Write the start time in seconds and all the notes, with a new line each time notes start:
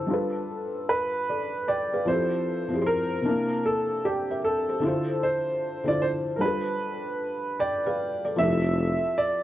Already playing: D3 D4 E4 F4 A4 C5
0.06 G3 D4 F4
0.12 A4 B4
0.89 B4
1.29 A4 D5
1.68 D5 G5
1.93 B4 F5
2.05 F3 C4 E4 C5
2.11 G4 A4
2.68 F3 C4 E4
2.74 G4 G#4
2.82 C5
2.86 A#4
3.22 C3 C4 D4
3.27 A#3 E4
3.66 A4
4.05 G4 D5 G5
4.31 A#4 E5
4.44 A4
4.69 G4 C5
4.80 D3 D4 E4
4.85 F4 C5
5.23 C5
5.84 D3 D4 E4 D5
5.89 F4 C5
6.02 C5
6.36 G3 A#4
6.40 D4 F4 A4 B4
6.46 B4
7.59 D5 G5
7.86 B4 F5
8.25 A4 D5
8.36 F1 F3 C4 E4 E5
8.41 G4 A4
9.18 D5